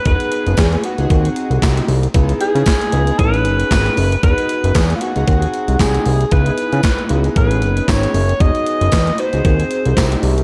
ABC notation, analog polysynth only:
X:1
M:4/4
L:1/16
Q:"Swing 16ths" 1/4=115
K:E
V:1 name="Analog polysynth"
[B,DFG]4 z2 [B,DFB] [B,DFG] [^B,DFG]6 z2 | [B,DEG]4 z2 [B,DEG] [B,DEG] [B,CDG]6 z2 | [B,DFG]4 z2 [B,DFG] [B,DFG] [^B,DFG]6 z2 | [B,DEG]4 z2 [B,DEF] [B,DEG] [B,CDG]6 z2 |
[B,DFG]4 z2 [B,DFB] [B,DFG] [^B,DFG]6 z2 |]